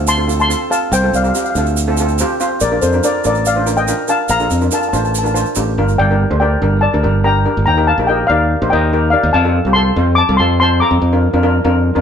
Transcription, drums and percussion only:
0.07 shaker
0.29 shaker
0.40 shaker
0.50 shaker
0.72 shaker
0.93 shaker
1.14 shaker
1.24 shaker
1.35 shaker
1.45 shaker
1.55 shaker
1.66 shaker
1.77 shaker
1.97 shaker
2.08 shaker
2.19 shaker
2.40 shaker
2.60 shaker
2.82 shaker
2.92 shaker
3.03 shaker
3.24 shaker
3.35 shaker
3.45 shaker
3.67 shaker
3.77 shaker
3.88 shaker
4.08 shaker
4.29 shaker
4.40 shaker
4.50 shaker
4.61 shaker
4.71 shaker
4.83 shaker
4.93 shaker
5.05 shaker
5.15 shaker
5.26 shaker
5.36 shaker
5.45 shaker
5.55 shaker
5.88 shaker

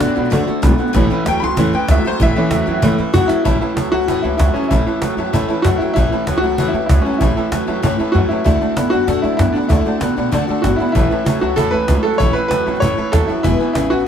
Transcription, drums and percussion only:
0.01 cajon bass, cajon slap
0.16 cajon slap
0.24 cajon slap
0.32 cajon bass, cajon slap
0.47 cajon slap
0.63 cajon bass, cajon slap
0.79 cajon slap
0.87 cajon slap
0.95 cajon bass, cajon slap
1.10 cajon slap
1.26 cajon bass, cajon slap
1.42 cajon slap
1.57 cajon bass, cajon slap
1.73 cajon slap
1.88 cajon bass, cajon slap
2.05 cajon slap
2.13 cajon slap
2.20 cajon bass, cajon slap
2.36 cajon slap
2.51 cajon bass, cajon slap
2.82 cajon bass, cajon slap
2.99 cajon slap
3.14 cajon bass, cajon slap
3.29 cajon slap
3.45 cajon bass, cajon slap
3.61 cajon slap
3.77 cajon bass, cajon slap
3.93 cajon slap
4.01 cajon slap
4.08 cajon bass, cajon slap
4.24 cajon slap
4.39 cajon bass, cajon slap
4.55 cajon slap
4.63 cajon slap
4.70 cajon bass, cajon slap
4.86 cajon slap
5.02 cajon bass, cajon slap
5.18 cajon slap
5.33 cajon bass, cajon slap
5.49 cajon slap
5.64 cajon bass, cajon slap
5.96 cajon bass, cajon slap
6.12 cajon slap
6.27 cajon bass, cajon slap
6.43 cajon slap
6.51 cajon slap
6.58 cajon bass, cajon slap
6.74 cajon slap
6.89 cajon bass, cajon slap
7.13 cajon slap
7.21 cajon bass, cajon slap
7.36 cajon slap
7.52 cajon bass, cajon slap
7.83 cajon bass, cajon slap
7.99 cajon slap
8.46 cajon bass, cajon slap
8.61 cajon slap
8.77 cajon bass, cajon slap
8.92 cajon slap
9.08 cajon bass, cajon slap
9.24 cajon slap
9.39 cajon bass, cajon slap
9.55 cajon slap
9.62 cajon slap
9.69 cajon bass, cajon slap
9.85 cajon slap
10.01 cajon bass, cajon slap
10.17 cajon slap
10.32 cajon bass, cajon slap
10.48 cajon slap
10.64 cajon bass, cajon slap
10.80 cajon slap
10.87 cajon slap
10.95 cajon bass, cajon slap
11.11 cajon slap
11.26 cajon bass, cajon slap
11.57 cajon bass, cajon slap
11.88 cajon bass, cajon slap
12.04 cajon slap
12.13 cajon slap
12.20 cajon bass, cajon slap
12.36 cajon slap
12.51 cajon bass, cajon slap
12.67 cajon slap
12.75 cajon slap
12.82 cajon bass, cajon slap
12.98 cajon slap
13.13 cajon bass, cajon slap
13.29 cajon slap
13.44 cajon bass, cajon slap
13.60 cajon slap
13.75 cajon bass, cajon slap
13.99 cajon slap

